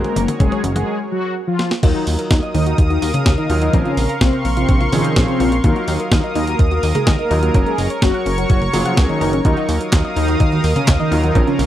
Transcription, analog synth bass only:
0.16 0.26 F#1 loud
0.40 0.50 F#1 medium
0.64 0.84 F#1 medium
1.83 1.93 D#2 medium
2.07 2.17 D#2 medium
2.31 2.41 D#2 loud
2.54 2.74 D#2 medium
2.78 2.98 D#2 medium
3.02 3.12 D#2 loud
3.26 3.36 D#2 medium
3.50 3.70 D#2 loud
3.73 3.83 A#1 loud
3.97 4.07 A#1 loud
4.21 4.31 A#1 loud
4.45 4.65 A#1 medium
4.69 4.89 A#1 medium
4.93 5.03 A#1 loud
5.16 5.26 A#1 medium
5.40 5.60 A#1 loud
5.64 5.74 D#2 medium
5.88 5.98 D#2 loud
6.12 6.22 D#2 medium
6.36 6.55 D#2 medium
6.59 6.79 D#2 medium
6.83 6.93 D#2 loud
7.07 7.17 D#2 loud
7.30 7.50 D#2 loud
7.54 7.64 F#1 loud
7.78 7.88 F#1 loud
8.02 8.12 F#1 medium
8.26 8.46 F#1 medium
8.50 8.70 F#1 medium
8.73 8.83 F#1 loud
8.97 9.07 C#2 medium
9.21 9.41 F#1 loud
9.45 9.55 D#2 loud
9.69 9.79 D#2 medium
9.92 10.02 D#2 medium
10.16 10.36 D#2 medium
10.40 10.60 D#2 medium
10.64 10.74 D#2 loud
10.88 10.98 D#2 medium
11.11 11.31 D#2 loud
11.35 11.45 A#1 loud
11.59 11.66 A#1 loud

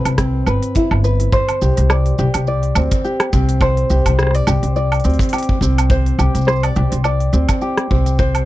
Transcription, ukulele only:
0.00 0.18 C4 medium
0.00 0.75 E4 medium
0.00 1.32 A4 medium
0.00 0.46 B4 medium
0.18 1.93 C4 medium
0.47 1.03 B4 medium
0.76 1.39 E4 medium
1.04 1.39 B4 medium
1.33 3.61 C5 medium
1.62 2.17 G4 medium
1.90 2.47 D5 medium
2.19 3.03 G4 medium
2.48 4.18 D5 medium
2.76 3.33 C4 medium
3.04 3.89 G4 medium
3.33 5.04 C4 medium
3.62 4.18 C5 medium
3.90 4.46 G4 medium
4.18 4.35 C5 medium
4.35 4.75 D5 medium
4.47 5.32 G4 medium
4.76 6.46 D5 medium
5.04 5.61 C4 medium
5.33 6.17 G4 medium
5.62 7.33 C4 medium
5.90 6.47 C5 medium
6.19 6.75 G4 medium
6.47 6.63 C5 medium
6.63 7.04 D5 medium
6.76 7.60 G4 medium
7.05 8.45 D5 medium
7.33 7.90 C4 medium
7.62 8.45 G4 medium
7.90 8.45 C4 medium
8.19 8.45 C5 medium

